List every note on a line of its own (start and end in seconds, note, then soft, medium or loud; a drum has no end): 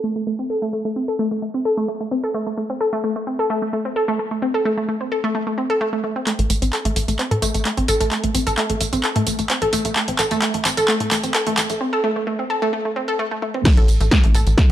0.04 0.07 A3 loud
0.16 0.21 A3 medium
0.27 0.30 A3 medium
0.39 0.42 C4 medium
0.50 0.56 A4 loud
0.62 0.65 A3 loud
0.73 0.79 A3 medium
0.85 0.88 A3 medium
0.96 0.99 C4 medium
1.08 1.13 A4 loud
1.19 1.22 A3 loud
1.31 1.36 A3 medium
1.42 1.46 A3 medium
1.54 1.57 C4 medium
1.65 1.71 A4 loud
1.77 1.80 A3 loud
1.88 1.94 A3 medium
2.00 2.04 A3 medium
2.11 2.15 C4 medium
2.24 2.29 A4 loud
2.34 2.38 A3 loud
2.47 2.52 A3 medium
2.58 2.61 A3 medium
2.70 2.73 C4 medium
2.81 2.86 A4 loud
2.93 2.96 A3 loud
3.04 3.09 A3 medium
3.16 3.19 A3 medium
3.27 3.30 C4 medium
3.39 3.44 A4 loud
3.50 3.53 A3 loud
3.62 3.67 A3 medium
3.73 3.76 A3 medium
3.85 3.88 C4 medium
3.96 4.02 A4 loud
4.08 4.11 A3 loud
4.19 4.25 A3 medium
4.31 4.34 A3 medium
4.42 4.46 C4 medium
4.54 4.59 A4 loud
4.65 4.69 A3 loud
4.77 4.83 A3 medium
4.88 4.92 A3 medium
5.01 5.04 C4 medium
5.12 5.17 A4 medium
5.24 5.27 A3 loud
5.35 5.40 A3 medium
5.47 5.50 A3 medium
5.58 5.61 C4 medium
5.70 5.75 A4 loud
5.81 5.84 A3 medium
5.93 5.98 A3 medium
6.04 6.07 A3 medium
6.16 6.19 C4 medium
6.27 6.30 A3 loud
6.27 clap soft
6.27 closed hi-hat medium
6.27 tambourine soft
6.39 6.48 A1 medium
6.39 6.44 A3 medium
6.39 closed hi-hat medium
6.50 6.60 A1 medium
6.50 6.53 A3 medium
6.50 open hi-hat loud
6.50 tambourine medium
6.62 6.71 A1 medium
6.62 6.65 C4 medium
6.62 closed hi-hat medium
6.62 tambourine soft
6.73 6.79 A4 loud
6.73 clap medium
6.73 closed hi-hat medium
6.73 tambourine soft
6.85 6.94 A1 medium
6.85 6.88 A3 loud
6.85 closed hi-hat medium
6.96 7.06 A1 loud
6.96 7.02 A3 medium
6.96 open hi-hat medium
6.96 tambourine medium
7.08 7.17 A1 loud
7.08 7.11 A3 medium
7.08 closed hi-hat medium
7.08 tambourine soft
7.19 7.22 C4 medium
7.19 clap soft
7.19 closed hi-hat medium
7.19 tambourine soft
7.31 7.41 A2 medium
7.31 7.36 A4 medium
7.31 closed hi-hat medium
7.42 7.53 A1 medium
7.42 7.46 A3 loud
7.42 open hi-hat loud
7.42 tambourine medium
7.54 7.64 A1 medium
7.54 7.59 A3 medium
7.54 closed hi-hat medium
7.54 tambourine soft
7.65 7.69 A3 medium
7.65 clap medium
7.65 closed hi-hat medium
7.65 tambourine soft
7.77 7.87 A1 medium
7.77 7.80 C4 medium
7.77 closed hi-hat medium
7.88 7.99 A1 loud
7.88 7.94 A4 loud
7.88 open hi-hat medium
7.88 tambourine medium
8.00 8.10 A#1 medium
8.00 8.04 A3 medium
8.00 closed hi-hat medium
8.00 tambourine soft
8.11 8.17 A3 medium
8.11 clap medium
8.11 closed hi-hat medium
8.11 tambourine soft
8.24 8.33 A1 medium
8.24 8.27 A3 medium
8.24 closed hi-hat medium
8.34 8.45 A1 loud
8.34 8.38 C4 medium
8.34 open hi-hat loud
8.34 tambourine medium
8.47 8.56 A1 medium
8.47 8.52 A4 loud
8.47 closed hi-hat medium
8.47 tambourine soft
8.58 8.61 A3 loud
8.58 clap medium
8.58 closed hi-hat medium
8.58 tambourine soft
8.70 8.79 A1 medium
8.70 8.75 A3 medium
8.70 closed hi-hat medium
8.81 8.91 A1 loud
8.81 8.84 A3 medium
8.81 open hi-hat medium
8.81 tambourine medium
8.93 9.02 A1 medium
8.93 8.96 C4 medium
8.93 closed hi-hat medium
8.93 tambourine soft
9.04 9.09 A4 loud
9.04 clap medium
9.04 closed hi-hat medium
9.04 tambourine soft
9.16 9.25 A2 medium
9.16 9.19 A3 loud
9.16 closed hi-hat medium
9.27 9.37 A1 medium
9.27 9.32 A3 medium
9.27 open hi-hat loud
9.27 tambourine medium
9.39 9.48 A1 medium
9.39 9.42 A3 medium
9.39 closed hi-hat medium
9.39 tambourine soft
9.50 9.53 C4 medium
9.50 clap medium
9.50 closed hi-hat medium
9.50 tambourine soft
9.62 9.71 A1 medium
9.62 9.67 A4 loud
9.62 closed hi-hat medium
9.73 9.83 A1 loud
9.73 9.76 A3 loud
9.73 open hi-hat medium
9.73 tambourine medium
9.85 9.94 A#1 medium
9.85 9.90 A3 medium
9.85 closed hi-hat medium
9.85 tambourine soft
9.96 9.99 A3 medium
9.96 clap medium
9.96 closed hi-hat medium
9.96 tambourine soft
10.08 10.17 A1 medium
10.08 10.11 C4 medium
10.08 closed hi-hat medium
10.19 10.29 A1 loud
10.19 10.25 A4 loud
10.19 clap medium
10.19 open hi-hat loud
10.19 tambourine medium
10.31 10.40 A1 medium
10.31 10.34 A3 loud
10.31 closed hi-hat medium
10.31 tambourine soft
10.42 10.48 A3 medium
10.42 clap medium
10.42 closed hi-hat medium
10.42 tambourine soft
10.54 10.64 A1 medium
10.54 10.57 A3 medium
10.54 closed hi-hat medium
10.65 10.75 A1 loud
10.65 10.69 C4 medium
10.65 clap medium
10.65 open hi-hat loud
10.65 tambourine medium
10.77 10.87 A1 medium
10.77 10.82 A4 loud
10.77 closed hi-hat medium
10.77 tambourine soft
10.88 10.92 A3 loud
10.88 clap medium
10.88 closed hi-hat medium
10.88 tambourine soft
11.00 11.10 A2 medium
11.00 11.06 A3 medium
11.00 closed hi-hat medium
11.11 11.22 A1 loud
11.11 11.15 A3 medium
11.11 clap medium
11.11 open hi-hat loud
11.11 tambourine medium
11.23 11.33 A1 medium
11.23 11.27 C4 medium
11.23 closed hi-hat medium
11.23 tambourine soft
11.34 11.40 A4 loud
11.34 clap medium
11.34 closed hi-hat medium
11.34 tambourine soft
11.46 11.56 A1 medium
11.46 11.50 A3 loud
11.46 closed hi-hat medium
11.57 11.68 A1 loud
11.57 11.63 A3 medium
11.57 clap medium
11.57 open hi-hat loud
11.57 tambourine medium
11.70 11.79 A#1 medium
11.70 11.73 A3 medium
11.70 closed hi-hat medium
11.70 tambourine soft
11.81 11.84 C4 medium
11.93 11.98 A4 loud
12.04 12.07 A3 loud
12.16 12.21 A3 medium
12.27 12.30 A3 medium
12.39 12.42 C4 medium
12.50 12.56 A4 medium
12.62 12.65 A3 loud
12.73 12.79 A3 medium
12.85 12.88 A3 medium
12.96 12.99 C4 medium
13.08 13.13 A4 medium
13.19 13.22 A3 loud
13.31 13.36 A3 medium
13.42 13.46 A3 medium
13.42 high tom medium
13.54 13.57 C4 medium
13.54 mid tom medium
13.65 13.69 A3 medium
13.65 kick loud
13.65 snare loud
13.65 closed hi-hat medium
13.65 tambourine soft
13.65 crash loud
13.77 13.87 A1 medium
13.77 13.82 A4 loud
13.77 closed hi-hat medium
13.88 13.99 A1 medium
13.88 open hi-hat loud
13.88 tambourine medium
14.00 14.10 A1 loud
14.00 14.06 A3 medium
14.00 closed hi-hat medium
14.00 tambourine soft
14.11 14.20 A#3 medium
14.11 kick loud
14.11 snare loud
14.11 closed hi-hat medium
14.11 tambourine soft
14.24 14.33 A1 medium
14.24 14.27 A3 medium
14.24 closed hi-hat medium
14.35 14.45 A1 loud
14.35 14.40 A4 loud
14.35 open hi-hat medium
14.35 tambourine medium
14.47 14.56 A1 loud
14.47 closed hi-hat medium
14.47 tambourine soft
14.58 14.63 A3 medium
14.58 kick loud
14.58 snare loud
14.58 closed hi-hat medium
14.58 tambourine soft